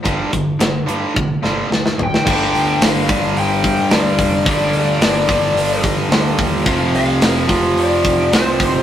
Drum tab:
CC |----------------|x---------------|----------------|----------------|
HH |x-x-x-x---------|--o-o-o-o-o-o-o-|o-o-o-o-o-o-o-o-|o-o-o-o-o-o-o-o-|
SD |----o-----o-oo-o|----o-------o---|----o-------o---|----o-------o---|
T1 |--------o-------|----------------|----------------|----------------|
FT |--------------o-|----------------|----------------|----------------|
BD |o-o-----o-------|o-----o---o---o-|o-----o---o---o-|o-----o---o---o-|